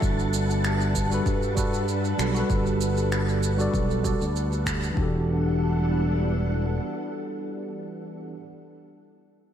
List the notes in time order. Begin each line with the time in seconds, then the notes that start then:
Already playing: G3 D4 F#4 A4 B4 E5 F#5 A5
0.02 G1 G3 A4, kick, shaker
0.19 shaker
0.34 shaker
0.50 shaker
0.65 finger snap, shaker
0.81 shaker
0.95 kick, shaker
1.10 G3 F#4 A4 B4, shaker
1.26 G2, kick, shaker
1.43 shaker
1.55 G3 F#4 A4 B4, kick, shaker
1.74 shaker
1.89 shaker
2.05 shaker
2.17 B1 G3 F#4 A4 B4, finger snap, shaker
2.32 G3 F#4, shaker
2.37 A4 B4
2.50 G1, kick, shaker
2.66 shaker
2.81 shaker
2.97 shaker
3.12 finger snap, shaker
3.29 shaker
3.43 shaker
3.57 G3 F#4 A4, shaker
3.61 D5
3.74 B1, kick, shaker
3.91 shaker
4.03 G3 F#4 A4 D5, kick, shaker
4.21 D2, shaker
4.36 shaker
4.53 shaker
4.66 finger snap, kick, shaker
4.83 shaker
4.91 E3 D4
4.97 E1 E3 G3 B3 D4 F#4 G4 A4 F#5, kick
5.03 A4